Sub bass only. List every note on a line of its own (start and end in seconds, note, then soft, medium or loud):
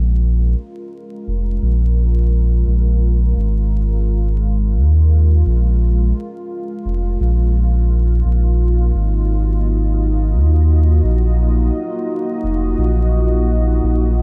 0.00 0.55 A#1 medium
1.28 1.59 F1 medium
1.62 2.64 A#1 medium
2.67 3.34 A#1 medium
3.37 4.78 G#1 medium
4.76 5.43 D#2 medium
5.46 6.13 A#1 loud
6.85 7.17 F1 medium
7.20 8.22 A#1 medium
8.25 8.92 A#1 medium
8.95 10.36 G#1 medium
10.34 11.01 D#2 medium
11.04 11.71 A#1 loud
12.44 12.75 F1 medium
12.78 13.80 A#1 loud
13.83 14.22 A#1 loud